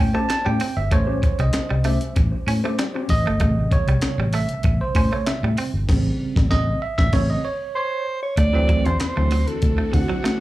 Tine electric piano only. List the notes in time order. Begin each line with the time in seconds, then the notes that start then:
Already playing: G5
0.14 A5
0.29 A5
0.46 G5
0.77 E5
0.92 G3 C#4 C5 C#5
1.40 D#5
1.85 E5
3.10 D#5
3.40 C3 C#3 G3
3.72 C#5
4.35 E5
4.81 C5
4.96 C5
5.12 C#5
5.26 E5
5.88 C#3 G3 C4
6.51 D#5
6.82 E5
6.98 E5
7.13 C#3 G3 C4 C#5
7.30 D#5
7.45 C#5
7.76 C#5
8.53 E3 F#3 A3 C4
9.16 E3 F#3 A3 C4
9.48 A3 C4
9.93 A3 C4
10.12 C4
10.24 A3 C4